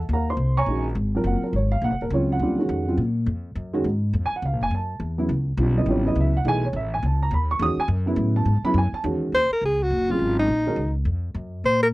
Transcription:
0.09 D#2
0.13 A#4 F5 F#5 A#5
0.30 C5 C6
0.37 C2
0.57 C#5 G#5 A#5 C#6
0.66 A#1 D#3 G#3 C#4 F#4
0.95 G#1
1.15 F#3 C4 F4 A#4
1.24 F#1 F#5
1.41 A#4, muted upright bass stroke
1.53 G#1 C#5
1.72 F5
1.82 A#1 F#5
1.91 F#1
2.01 D#1 A#4
2.10 C#2 C#3 F#3 C4 F4 C#5
2.32 F#5
2.39 D#2 D3 G3 C4 F4
2.58 D#3 G#3 C#4 F#4
2.69 F2
2.88 C#3 F#3 C4 F4
2.97 A#2
3.26 F2
3.55 F#2
3.73 D#3 G#3 C#4 F#4
3.84 G#2
4.13 F2
4.26 G#5
4.32 muted upright bass stroke
4.36 F#5
4.42 C#2 F5
4.53 A#1
4.61 F#1 G#5
4.71 F#2
4.75 A5
5.00 E2
5.18 C#3 F#3 B3 E4
5.29 C#2
5.57 B1 D3 G3 C4 F4
5.77 C#3 F#3 B3 E4 D#5
5.86 A1 D3 G3 C4 F4
5.90 C#5
6.05 C#3 F#3 B3 E4 D#5
6.15 C#2
6.20 E5
6.37 F#5
6.45 B1 E3 A3 D#4 G#4 G#5
6.65 C#5
6.73 A1 E5
6.94 G#5
7.03 C#2 A5
7.23 A#5
7.31 D#2 B5
7.51 C#6
7.59 E2 D#3 G#3 C#4 F#4 D#6
7.77 G#5, muted upright bass stroke
7.88 F#2
8.06 C#3 F#3 B3 E4
8.16 A2
8.36 A5
8.45 G#2
8.63 C#3 F#3 B3 E4 B5, muted upright bass stroke
8.74 F#2 G#5
8.92 A5, muted upright bass stroke
9.04 E2 D#3 G#3 C#4 F#4
9.32 D#2 C5
9.50 A#4, muted upright bass stroke
9.61 C#2 G#4
9.83 F#4
9.90 F#1
10.09 C#3 F#3 C4 F4 G#4
10.19 G#1
10.39 D#4
10.48 A#1
10.66 D#3 G#3 C#4 F#4 A#4
10.76 C#2
11.05 F2
11.35 F#2
11.64 A#2 C5
11.83 A#4

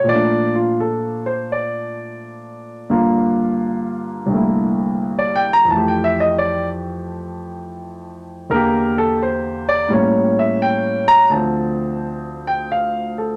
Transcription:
Already playing: C3
0.04 A#2 F3
0.09 A3 D5
0.15 D4
0.55 F4
0.80 A4
1.26 C5
1.52 D5
2.90 G2 D3 A#3 F4
4.26 C2 G2
4.30 D3 A3 A#3
4.36 E4
5.19 D5
5.36 G5
5.53 A#5
5.65 F2 E3
5.70 A3 A5
5.76 G4
5.88 G5
6.04 E5
6.20 D#5
6.38 D5
8.50 E2 D3 A#3 A#4
8.55 G4
8.98 A4
9.22 C5
9.69 D5
9.88 A2 G3 A#3
9.93 C#4 C#5
10.39 E5
10.62 G5
11.08 A#5
11.29 D2 D3 F3 A5
11.34 C4
12.47 G5
12.72 F5
13.18 A4

